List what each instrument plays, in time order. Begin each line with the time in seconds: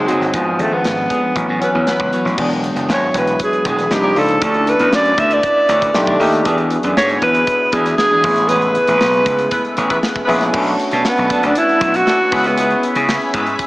Already playing: tine electric piano F#3 A#3 C4 D#4, horn section G#3 C4 F#4 C5
0.07 slap bass F#1, clean electric guitar F#3 C4 D#4 G#4, alto saxophone F#3, closed hi-hat
0.21 slap bass G1, muted clean electric guitar stroke, snare
0.33 slap bass G#1, clean electric guitar F3 B3 D4 G#4, tine electric piano F3 G#3 B3 D4, alto saxophone F3, kick, closed hi-hat
0.58 slap bass G#1, tine electric piano F3 G#3 B3 C#4, alto saxophone A3, muted clean electric guitar stroke, closed hi-hat
0.71 clean electric guitar F3 B3 D4 G#4, alto saxophone B3
0.84 slap bass G#1, muted clean electric guitar stroke, snare, closed hi-hat
0.97 muted clean electric guitar stroke
1.09 clean electric guitar F3 B3 D4 G#4, kick, closed hi-hat
1.22 muted clean electric guitar stroke
1.35 slap bass A1, tine electric piano E3 F#3 B3 C#4, muted clean electric guitar stroke, kick, closed hi-hat
1.48 slap bass A2, clean electric guitar F#3 B3 C#4 F#4
1.60 tine electric piano E3 F#3 B3 C#4, clean electric guitar F#3 B3 C#4 F#4, horn section F#3 B3 E4 B4, closed hi-hat
1.74 slap bass E2, muted clean electric guitar stroke
1.87 horn section F#3 B3 E4 B4, muted clean electric guitar stroke, snare, closed hi-hat
2.00 slap bass C#2, muted clean electric guitar stroke, kick
2.13 clean electric guitar F#3 B3 C#4 F#4, closed hi-hat
2.25 slap bass A1, muted clean electric guitar stroke, snare
2.37 slap bass E1, clean electric guitar E3 B3 D4 G#4, analog synth pad E3 G#3 B3 E4, tine electric piano F#3 G#3 B3 D4, kick, crash
2.51 muted clean electric guitar stroke, closed hi-hat
2.64 muted clean electric guitar stroke, closed hi-hat
2.76 slap bass F#1, clean electric guitar E3 B3 D4 G#4, closed hi-hat
2.89 slap bass G#1, muted clean electric guitar stroke, snare
2.93 alto saxophone C#5
3.02 muted clean electric guitar stroke
3.14 slap bass E1, alto saxophone B4, kick, closed hi-hat
3.27 muted clean electric guitar stroke, closed hi-hat
3.39 alto saxophone G#4, kick, closed hi-hat
3.53 muted clean electric guitar stroke, closed hi-hat
3.65 slap bass E1, clean electric guitar E3 B3 D4 G#4, alto saxophone G#4, kick, closed hi-hat
3.79 muted clean electric guitar stroke, snare, closed hi-hat
3.90 slap bass C2, tine electric piano F3 A#3 D4 D#4, alto saxophone G4, muted clean electric guitar stroke, snare
4.03 clean electric guitar D#4 F4 A#4 D5
4.15 slap bass C#2, tine electric piano F3 A#3 D4 D#4, muted clean electric guitar stroke, open hi-hat
4.19 alto saxophone A4
4.29 muted clean electric guitar stroke, closed hi-hat
4.40 slap bass D2, tine electric piano A3 C#4 D4, analog synth pad A3 B3 E4, clean electric guitar D4 E4 A4 C#5, kick, closed hi-hat
4.54 muted clean electric guitar stroke, closed hi-hat
4.67 alto saxophone B4, muted clean electric guitar stroke, closed hi-hat
4.79 slap bass E2, clean electric guitar D4 E4 A4 C#5, closed hi-hat
4.93 slap bass F#2, alto saxophone D5, muted clean electric guitar stroke, snare
5.05 muted clean electric guitar stroke, closed hi-hat
5.18 slap bass D2, alto saxophone E5, kick, closed hi-hat
5.31 alto saxophone D5, muted clean electric guitar stroke, closed hi-hat
5.43 kick, closed hi-hat
5.57 muted clean electric guitar stroke
5.69 slap bass D2, clean electric guitar D4 E4 A4 C#5, closed hi-hat
5.82 muted clean electric guitar stroke, kick, closed hi-hat
5.94 slap bass B1, tine electric piano A3 D4 D#4 G4, muted clean electric guitar stroke, snare
6.07 clean electric guitar D#3 A3 D4 G4, kick
6.20 slap bass D#2, tine electric piano A3 D4 D#4 G4, muted clean electric guitar stroke, open hi-hat
6.32 muted clean electric guitar stroke, snare, closed hi-hat
6.45 slap bass E2, analog synth pad D3 E3 G#3 B3 E4, clean electric guitar E3 B3 D4 G#4, tine electric piano B3 D4 F#4 G#4, kick, closed hi-hat
6.58 muted clean electric guitar stroke, closed hi-hat
6.70 muted clean electric guitar stroke, closed hi-hat
6.83 slap bass F#2, clean electric guitar E3 B3 D4 G#4, closed hi-hat
6.97 slap bass G#2, alto saxophone C#5, muted clean electric guitar stroke, snare
7.09 muted clean electric guitar stroke, closed hi-hat
7.22 slap bass E2, alto saxophone B4, kick, closed hi-hat
7.34 muted clean electric guitar stroke, closed hi-hat
7.47 kick, closed hi-hat
7.59 muted clean electric guitar stroke
7.72 slap bass E2, clean electric guitar E3 B3 D4 G#4, alto saxophone G#4, kick, closed hi-hat
7.85 muted clean electric guitar stroke, snare, closed hi-hat
7.97 alto saxophone G#4, muted clean electric guitar stroke, snare
8.11 clean electric guitar E3 B3 D4 G#4
8.23 slap bass A1, analog synth pad C#3 A3, tine electric piano B3 C#4 E4 G#4, muted clean electric guitar stroke, kick, open hi-hat
8.36 muted clean electric guitar stroke, snare, closed hi-hat
8.48 clean electric guitar E3 B3 C#4 G#4, alto saxophone B4, closed hi-hat
8.62 muted clean electric guitar stroke, closed hi-hat
8.75 muted clean electric guitar stroke, closed hi-hat
8.87 slap bass A1, clean electric guitar E3 B3 C#4 G#4, closed hi-hat
9.00 slap bass B1, muted clean electric guitar stroke, snare
9.14 muted clean electric guitar stroke, closed hi-hat
9.26 slap bass C#2, kick, closed hi-hat
9.39 muted clean electric guitar stroke, closed hi-hat
9.51 horn section G#3 B3 E4 B4, kick, closed hi-hat
9.65 muted clean electric guitar stroke, closed hi-hat
9.77 slap bass A1, clean electric guitar E3 B3 C#4 G#4, closed hi-hat
9.89 horn section G#3 B3 E4 B4, muted clean electric guitar stroke, kick, closed hi-hat
10.03 muted clean electric guitar stroke, snare
10.16 muted clean electric guitar stroke, kick
10.25 slap bass A#1, horn section G#3 B3 E4 B4, tine electric piano B3 C#4 E4 G#4, open hi-hat
10.41 muted clean electric guitar stroke, snare, closed hi-hat
10.53 slap bass B1, clean electric guitar F#3 B3 D4 A4, tine electric piano A3 C#4 D4 F#4, analog synth pad F#4 B4 F#5 A5, kick, crash
10.67 closed hi-hat
10.79 muted clean electric guitar stroke, closed hi-hat
10.91 slap bass B2, clean electric guitar F#3 B3 D4 A4, closed hi-hat
11.05 alto saxophone B3, snare
11.18 slap bass B1, muted clean electric guitar stroke, closed hi-hat
11.30 clean electric guitar F#3 B3 D4 A4, kick, closed hi-hat
11.43 slap bass D2, alto saxophone D4, muted clean electric guitar stroke, closed hi-hat
11.55 alto saxophone E4, muted clean electric guitar stroke, closed hi-hat
11.69 muted clean electric guitar stroke, closed hi-hat
11.81 slap bass B1, kick, closed hi-hat
11.94 alto saxophone F#4, muted clean electric guitar stroke, snare, closed hi-hat
12.06 horn section F#3 A3 D4 A4, snare
12.20 muted clean electric guitar stroke
12.31 slap bass C#2, horn section G#3 B3 E4 B4, clean electric guitar G#3 B3 E4 G#4, tine electric piano B3 C#4 E4 G#4, analog synth pad G#4 C#5 E5 B5, kick, open hi-hat
12.44 alto saxophone B3, muted clean electric guitar stroke, snare, closed hi-hat
12.58 clean electric guitar G#3 B3 E4 G#4, closed hi-hat
12.70 closed hi-hat
12.83 muted clean electric guitar stroke, closed hi-hat
12.95 slap bass C#3, clean electric guitar G#3 B3 E4 G#4, closed hi-hat
13.09 snare
13.21 muted clean electric guitar stroke, closed hi-hat
13.34 slap bass G#2, clean electric guitar G#3 B3 E4 G#4, kick, closed hi-hat
13.46 muted clean electric guitar stroke, closed hi-hat
13.59 muted clean electric guitar stroke, kick, closed hi-hat